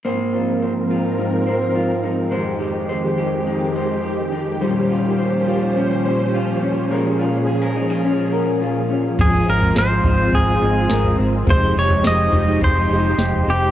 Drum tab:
CC |----------------|----------------|----------------|----------------|
SD |----------------|----------------|----------------|----------------|
FT |----------------|----------------|----------------|----------------|
BD |----------------|----------------|----------------|----------------|

CC |x---------------|----------------|
SD |----o-------o---|----o-------o---|
FT |o--o--o-o----o--|o--o--o-o----o--|
BD |o-----o-o-------|o-------o-------|